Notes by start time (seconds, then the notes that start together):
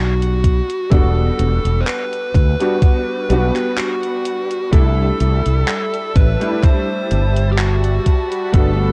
Already playing: B1 G3 B3 D4 F#4
0.22 closed hi-hat
0.44 kick, closed hi-hat
0.70 closed hi-hat
0.90 E1 G3 B3 D4 F#4 A4, kick, closed hi-hat
1.39 E1, closed hi-hat
1.65 E1, closed hi-hat
1.81 C5
1.87 B4, clap, closed hi-hat
2.13 closed hi-hat
2.34 D2 B4, kick, closed hi-hat
2.60 G3 B3 D4 F#4, closed hi-hat
2.82 kick, closed hi-hat
3.29 B1 G3 B3 D4 F#4, closed hi-hat
3.56 clap, closed hi-hat
3.78 F#4, clap, closed hi-hat
4.03 closed hi-hat
4.25 closed hi-hat
4.51 closed hi-hat
4.71 C2 G3 A3 D4 E4 A4 E5 A5, kick, closed hi-hat
5.20 C2, closed hi-hat
5.46 C2, closed hi-hat
5.68 clap, closed hi-hat
5.94 closed hi-hat
6.16 A1 B4, kick, closed hi-hat
6.40 G3 A3 D4 E4, closed hi-hat
6.63 C5, kick, clap, closed hi-hat
7.11 G1, closed hi-hat
7.36 closed hi-hat
7.52 G4
7.58 F#4, clap, closed hi-hat
7.84 closed hi-hat
8.06 F#5 B5, kick, closed hi-hat
8.32 closed hi-hat
8.52 G1 A3 B3 D4 F#4 A4, kick, closed hi-hat